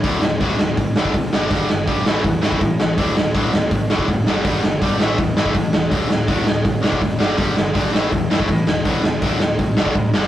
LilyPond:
<<
  \new Staff \with { instrumentName = "Distorted electric guitar" } { \clef bass \time 4/4 \key a \mixolydian \tempo 4 = 164 <d, a, d>8 <d, a,>8 <d, a, d>8 <d, a,>8 <d, a,>8 <d, a, d>8 <d, a,>8 <g, d g>8 | <g, d g>8 <g, d>8 <g, d g>8 <a, e a>8 <a, e>8 <a, e a>8 <a, e>8 <a, e>8 | <d, a, d>8 <d, a,>8 <d, a, d>8 <d, a,>8 <d, a,>8 <d, a, d>8 <d, a,>8 <g, d g>8 | <g, d g>8 <g, d>8 <g, d g>8 <a, e a>8 <a, e>8 <a, e a>8 <a, e>8 <a, e>8 |
<d, a, d>8 <d, a,>8 <d, a, d>8 <d, a,>8 <d, a,>8 <d, a, d>8 <d, a,>8 <g, d g>8 | <g, d g>8 <g, d>8 <g, d g>8 <a, e a>8 <a, e>8 <a, e a>8 <a, e>8 <a, e>8 | <d, a, d>8 <d, a,>8 <d, a, d>8 <d, a,>8 <d, a,>8 <d, a, d>8 <d, a,>8 <g, d g>8 | }
  \new Staff \with { instrumentName = "Picked electric bass" } { \clef bass \time 4/4 \key a \mixolydian d,,8 d,,8 d,,8 d,,8 a,,8 b,,8 d,8 g,,8 | g,,8 g,,8 g,,8 a,,8 e,8 g,8 a,8 a,,8 | d,,8 d,,8 d,,8 d,,8 a,,8 b,,8 fis,,8 g,,8 | g,,8 g,,8 g,,8 a,,8 e,8 g,8 a,8 e,,8 |
d,,8 d,,8 d,,8 d,,8 a,,8 b,,8 fis,,8 g,,8 | g,,8 g,,8 gis,,8 a,,8 e,8 g,8 a,8 e,,8 | d,,8 d,,8 d,,8 d,,8 a,,8 b,,8 d,8 g,,8 | }
  \new DrumStaff \with { instrumentName = "Drums" } \drummode { \time 4/4 <hho bd>8 sn8 <hho bd>8 sn8 <hho bd>8 sn16 bd16 <hho bd>8 sn8 | <hho bd>8 sn8 <hho bd>8 sn8 <hho bd>8 sn16 bd16 <hho bd>8 sn8 | <hho bd>8 sn8 <hho bd>8 sn8 <hho bd>8 sn16 bd16 <hho bd>8 sn8 | <hho bd>8 sn8 <hho bd>8 sn8 <hho bd>8 sn16 bd16 <hho bd>8 sn8 |
<hho bd>8 sn8 <hho bd>8 sn8 <hho bd>8 sn16 bd16 <hho bd>8 sn8 | <hho bd>8 sn8 <hho bd>8 sn8 <hho bd>8 sn16 bd16 <hho bd>8 sn8 | <hho bd>8 sn8 <hho bd>8 sn8 <hho bd>8 sn16 bd16 <hho bd>8 sn8 | }
>>